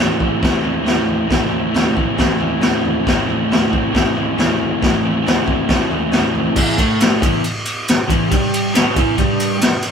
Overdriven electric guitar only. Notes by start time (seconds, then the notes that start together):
Already playing: A2 E3
0.00 A3 C4 E4
0.19 C4 E4
0.23 A3
0.39 A2 E3 A3 C4
0.43 E4
0.62 A3 C4 E4
0.83 E3 A3 C4
0.87 E4
1.26 A2 E3 A3
1.31 C4 E4
1.49 C4 E4
1.53 A3
1.71 E3 A3 C4
1.76 E4
1.93 C4 E4
1.97 A3
2.15 A2 E3 A3 C4
2.20 E4
2.38 C4 E4
2.42 A3
2.61 E3 A3 C4 E4
3.04 A2 E3 A3 C4
3.09 E4
3.27 C4 E4
3.31 A3
3.48 E3 A3 C4 E4
3.70 A3 C4 E4
3.91 A2 E3 A3 C4
3.95 E4
4.14 C4 E4
4.18 A3
4.36 E3 A3 C4
4.40 E4
4.80 A2 E3 A3 C4
4.84 E4
5.03 A3 C4 E4
5.23 E3 A3 C4
5.27 E4
5.45 C4 E4
5.50 A3
5.67 A2 E3 A3 C4
5.71 E4
5.89 C4 E4
5.94 A3
6.12 E3 A3 C4
6.16 E4
6.55 E2 E3
6.77 A2 A3
7.21 E2 E3
8.08 E2 E3
8.29 G2 G3
8.73 B2 B3
8.95 E2 E3
9.17 G2 G3
9.60 E2